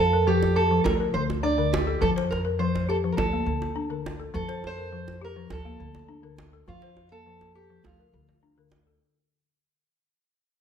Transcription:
0.00 0.81 F2 medium
0.00 0.28 A4 medium
0.00 0.27 C5 medium
0.13 0.57 A#4 medium
0.13 djembe slap soft
0.27 0.56 F3 medium
0.27 0.57 G4 medium
0.27 djembe slap soft
0.42 djembe slap medium
0.42 djembe tone soft
0.56 1.00 G4 medium
0.56 0.84 A4 medium
0.71 0.86 F3 medium
0.84 1.12 D2 medium
0.84 0.92 A#4 medium
0.84 djembe slap medium
0.84 djembe tone medium
0.84 djembe bass medium
1.00 1.44 A#4 medium
1.14 1.98 D2 medium
1.14 1.44 D3 medium
1.14 1.22 C5 medium
1.30 djembe slap medium
1.30 djembe tone medium
1.43 1.87 D4 medium
1.43 1.71 D5 medium
1.58 1.87 D3 medium
1.58 2.02 A#4 medium
1.73 2.03 G4 medium
1.73 djembe slap medium
1.73 djembe tone medium
1.87 2.16 A4 medium
1.87 djembe slap soft
2.01 3.14 F2 medium
2.01 2.31 F3 medium
2.01 2.09 A4 medium
2.01 djembe slap soft
2.01 djembe bass medium
2.16 2.60 C5 medium
2.16 djembe slap medium
2.31 2.39 A#4 medium
2.31 djembe slap soft
2.31 djembe tone medium
2.45 2.89 A#4 medium
2.45 djembe slap soft
2.59 2.89 F3 medium
2.59 2.89 C5 medium
2.59 djembe slap soft
2.75 djembe slap medium
2.75 djembe tone medium
2.89 3.33 G4 medium
2.89 2.95 A4 medium
3.04 3.18 F3 medium
3.12 3.17 A#4 medium
3.17 3.45 D2 medium
3.17 4.01 A4 medium
3.17 djembe slap medium
3.17 djembe tone medium
3.17 djembe bass medium
3.33 3.76 A#3 medium
3.46 4.30 D2 medium
3.46 3.76 D3 medium
3.62 djembe slap medium
3.62 djembe tone medium
3.76 4.20 D4 medium
3.90 4.20 D3 medium
3.90 4.34 A#4 medium
4.06 djembe slap medium
4.06 djembe tone medium
4.20 4.49 A4 medium
4.20 djembe slap soft
4.34 5.47 F2 medium
4.34 4.63 F3 medium
4.34 4.65 A4 medium
4.34 djembe slap soft
4.34 djembe bass medium
4.49 4.92 C5 medium
4.49 djembe slap soft
4.64 5.20 C5 loud
4.64 djembe slap soft
4.64 djembe tone medium
4.78 5.22 A#4 medium
4.78 djembe slap soft
4.92 5.22 F3 medium
4.92 djembe slap soft
5.08 djembe slap medium
5.08 djembe tone medium
5.21 5.66 G4 medium
5.21 5.52 A#4 medium
5.36 5.51 F3 medium
5.50 5.78 D2 medium
5.50 6.35 A4 medium
5.50 djembe slap medium
5.50 djembe tone medium
5.50 djembe bass medium
5.65 6.09 A#3 medium
5.80 6.64 D2 medium
5.80 6.09 D3 medium
5.95 djembe slap medium
5.95 djembe tone soft
6.09 6.53 D4 medium
6.23 6.53 D3 medium
6.23 6.67 A#4 medium
6.38 djembe slap medium
6.38 djembe tone medium
6.53 6.82 A4 medium
6.53 djembe slap soft
6.68 7.80 F2 medium
6.68 6.97 F3 medium
6.68 7.09 F4 medium
6.68 djembe bass medium
6.82 7.26 C5 medium
6.82 djembe slap medium
6.97 djembe slap soft
6.97 djembe tone medium
7.12 7.55 A#3 medium
7.12 7.52 A4 loud
7.12 djembe slap soft
7.26 7.55 F3 medium
7.26 djembe slap soft
7.41 djembe slap medium
7.41 djembe tone medium
7.55 7.85 G4 medium
7.55 7.99 G4 medium
7.55 djembe slap soft
7.70 7.84 F3 medium
7.84 8.11 D2 medium
7.84 8.69 F4 medium
7.84 djembe slap medium
7.84 djembe tone medium
7.84 djembe bass medium
8.00 8.43 A#4 medium
8.13 8.97 D2 medium
8.13 8.43 D3 medium
8.29 djembe slap soft
8.29 djembe tone soft
8.42 8.87 D4 medium
8.42 djembe slap soft
8.58 8.87 D3 medium
8.58 9.01 A#4 medium
8.72 djembe slap medium
8.72 djembe tone medium
8.86 9.16 A4 medium
8.86 djembe slap soft

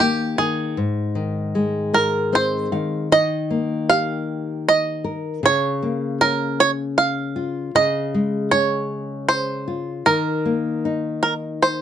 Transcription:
0.00 0.37 D#3 medium
0.00 0.75 A#3 soft
0.00 0.40 G4 medium
0.38 0.76 D#3 soft
0.38 2.28 G#4 medium
0.77 2.72 G#2 medium
1.15 2.67 D#3 soft
1.55 3.07 G#3 medium
1.94 2.30 A#4 medium
1.94 2.34 A#4 medium
2.32 3.09 C4 soft
2.32 2.69 C5 medium
2.32 3.12 C5 medium
2.72 3.10 D#3 soft
2.72 3.08 F5 medium
3.12 5.40 D#3 medium
3.12 3.89 D#5 medium
3.51 5.01 A#3 soft
3.89 5.40 G4 soft
3.89 4.68 F5 medium
4.68 5.45 D#5 medium
5.04 5.42 A#4 soft
5.43 7.70 C#3 medium
5.43 6.18 C#5 loud
5.82 7.32 A#3 soft
6.21 7.70 C#4 medium
6.21 6.60 A#4 medium
6.60 6.70 C#5 medium
6.98 7.70 F5 medium
7.36 7.73 F4 soft
7.75 10.02 C#3 medium
7.75 8.48 D#5 loud
8.14 9.64 G#3 soft
8.51 10.02 C#4 medium
8.51 9.28 C#5 medium
9.29 10.08 C5 medium
9.68 10.05 F4 soft
10.06 11.82 D#3 medium
10.06 11.21 A#4 medium
10.45 11.82 A#3 soft
10.85 11.82 D#4 medium
11.23 11.33 A#4 medium
11.62 11.82 C5 medium

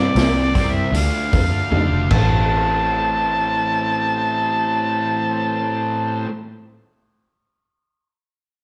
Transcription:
0.00 0.14 C3 medium
0.00 0.15 G3 medium
0.00 0.15 C4 medium
0.00 0.73 D5 medium
0.15 0.79 C2 medium
0.15 0.52 C3 medium
0.15 0.53 G3 medium
0.15 0.46 C4 medium
0.15 0.53 C4 medium
0.15 0.47 E4 medium
0.15 0.47 G4 medium
0.15 0.47 D5 medium
0.15 snare loud
0.15 open hi-hat medium
0.53 0.91 C3 medium
0.53 0.91 G3 medium
0.53 0.85 C4 medium
0.53 0.91 C4 medium
0.53 0.86 E4 medium
0.53 0.86 G4 medium
0.53 0.86 C5 medium
0.53 kick medium
0.53 open hi-hat medium
0.72 0.96 E5 medium
0.92 1.09 D2 medium
0.92 1.31 D3 medium
0.92 1.32 A3 medium
0.92 1.32 D4 medium
0.92 1.24 D4 medium
0.92 1.24 F4 medium
0.92 1.24 A4 medium
0.92 1.25 D5 medium
0.92 open hi-hat medium
0.96 2.08 F5 medium
1.31 1.49 F2 medium
1.31 1.70 D3 medium
1.31 1.70 A3 medium
1.31 1.63 D4 medium
1.31 1.70 D4 medium
1.31 1.63 F4 medium
1.31 1.64 A4 medium
1.31 1.64 D5 medium
1.31 kick medium
1.31 open hi-hat medium
1.71 1.88 F2 medium
1.71 2.09 D3 medium
1.71 2.10 A3 medium
1.71 2.11 D4 medium
1.71 2.03 D4 medium
1.71 2.03 F4 medium
1.71 2.04 D5 loud
1.71 high tom medium
1.75 2.04 A4 medium
1.91 2.09 F1 medium
2.09 6.23 A1 medium
2.09 6.25 A2 medium
2.09 6.27 E3 loud
2.09 6.23 A5 medium
2.09 kick medium
2.09 crash medium
2.14 6.30 A3 medium
2.14 6.28 C4 medium
2.14 6.26 E4 medium
2.14 6.27 A4 medium
2.14 6.27 C5 medium

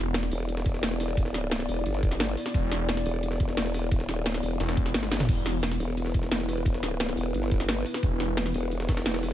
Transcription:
0.00 0.30 E1 medium
0.00 9.33 B3 medium
0.00 9.33 E4 medium
0.00 5.26 D5 loud
0.14 snare loud
0.14 closed hi-hat medium
0.14 ride medium
0.23 snare soft
0.31 1.29 E1 medium
0.31 open hi-hat medium
0.31 ride medium
0.49 closed hi-hat medium
0.49 ride medium
0.57 snare medium
0.66 kick loud
0.66 closed hi-hat medium
0.66 ride medium
0.74 snare soft
0.83 snare loud
0.83 closed hi-hat medium
0.83 ride medium
0.91 snare medium
1.00 snare medium
1.00 open hi-hat medium
1.00 ride medium
1.09 ride soft
1.17 kick loud
1.17 closed hi-hat medium
1.17 ride medium
1.26 1.51 D1 medium
1.26 snare soft
1.34 snare soft
1.34 closed hi-hat medium
1.34 ride medium
1.51 1.67 C1 medium
1.51 snare loud
1.51 closed hi-hat medium
1.51 ride medium
1.60 snare medium
1.60 snare soft
1.69 1.84 E1 loud
1.69 open hi-hat medium
1.69 ride medium
1.86 2.36 G1 loud
1.86 closed hi-hat medium
1.86 ride medium
1.94 snare soft
2.03 kick loud
2.03 closed hi-hat medium
2.03 ride medium
2.11 snare soft
2.20 snare loud
2.20 closed hi-hat medium
2.20 ride medium
2.29 snare soft
2.37 snare soft
2.37 open hi-hat medium
2.37 ride medium
2.46 snare soft
2.54 3.04 E1 loud
2.54 kick loud
2.54 closed hi-hat loud
2.54 ride medium
2.71 snare soft
2.71 closed hi-hat medium
2.71 ride medium
2.89 snare loud
2.89 closed hi-hat medium
2.89 ride medium
2.97 snare medium
2.97 snare soft
3.06 4.02 E1 loud
3.06 open hi-hat medium
3.06 ride medium
3.23 closed hi-hat medium
3.23 ride medium
3.32 snare medium
3.40 kick loud
3.40 closed hi-hat medium
3.40 ride medium
3.49 snare soft
3.57 snare loud
3.57 closed hi-hat loud
3.57 ride medium
3.66 snare medium
3.74 snare medium
3.74 open hi-hat medium
3.74 ride medium
3.83 ride soft
3.91 kick loud
3.91 closed hi-hat loud
3.91 ride medium
4.00 4.29 D#1 loud
4.00 snare soft
4.09 snare soft
4.09 closed hi-hat medium
4.09 ride medium
4.26 4.42 D1 loud
4.26 snare loud
4.26 closed hi-hat medium
4.26 ride medium
4.34 snare medium
4.34 snare soft
4.43 4.59 E1 medium
4.43 open hi-hat medium
4.43 ride medium
4.60 4.93 E1 medium
4.60 snare loud
4.60 closed hi-hat medium
4.60 ride medium
4.69 snare loud
4.69 ride medium
4.77 kick loud
4.77 closed hi-hat medium
4.77 ride medium
4.86 snare soft
4.94 5.27 G1 loud
4.94 snare loud
4.94 closed hi-hat loud
4.94 ride medium
5.03 snare loud
5.03 high tom medium
5.03 ride medium
5.11 snare medium
5.11 snare loud
5.11 open hi-hat medium
5.11 ride medium
5.20 snare loud
5.20 snare soft
5.20 mid tom medium
5.20 ride medium
5.29 5.79 E1 loud
5.29 9.33 B4 medium
5.29 kick loud
5.29 closed hi-hat loud
5.29 crash medium
5.29 ride medium
5.46 snare medium
5.46 closed hi-hat medium
5.46 ride medium
5.63 snare loud
5.63 closed hi-hat medium
5.63 ride medium
5.71 snare medium
5.71 snare soft
5.80 6.78 E1 medium
5.80 open hi-hat medium
5.80 ride medium
5.97 closed hi-hat medium
5.97 ride medium
6.06 snare medium
6.14 kick loud
6.14 closed hi-hat medium
6.14 ride medium
6.23 snare soft
6.32 snare loud
6.32 closed hi-hat loud
6.32 ride medium
6.40 snare medium
6.49 snare medium
6.49 open hi-hat medium
6.49 ride medium
6.57 ride soft
6.66 kick loud
6.66 closed hi-hat loud
6.66 ride medium
6.74 7.00 D1 medium
6.74 snare soft
6.83 snare medium
6.83 closed hi-hat medium
6.83 ride medium
7.00 7.16 C1 medium
7.00 snare loud
7.00 closed hi-hat medium
7.00 ride medium
7.09 snare medium
7.09 snare soft
7.17 7.33 E1 loud
7.17 open hi-hat medium
7.17 ride medium
7.34 7.84 G1 loud
7.34 closed hi-hat medium
7.34 ride medium
7.43 snare soft
7.51 kick loud
7.51 closed hi-hat medium
7.51 ride medium
7.60 snare soft
7.69 snare loud
7.69 closed hi-hat loud
7.69 ride medium
7.77 snare soft
7.86 snare soft
7.86 open hi-hat medium
7.86 ride medium
7.94 snare soft
7.94 snare medium
8.03 8.53 E1 loud
8.03 kick loud
8.03 closed hi-hat loud
8.03 ride medium
8.20 snare soft
8.20 closed hi-hat medium
8.20 ride medium
8.37 snare loud
8.37 closed hi-hat medium
8.37 ride medium
8.46 snare medium
8.46 snare soft
8.54 9.33 E1 medium
8.54 open hi-hat medium
8.54 ride medium
8.71 closed hi-hat medium
8.71 ride loud
8.80 snare medium
8.89 kick loud
8.89 snare loud
8.89 closed hi-hat medium
8.89 ride medium
8.97 snare loud
8.97 ride medium
9.06 snare loud
9.06 closed hi-hat medium
9.06 ride medium
9.14 snare loud
9.14 ride medium
9.23 snare medium
9.23 open hi-hat medium
9.23 ride medium

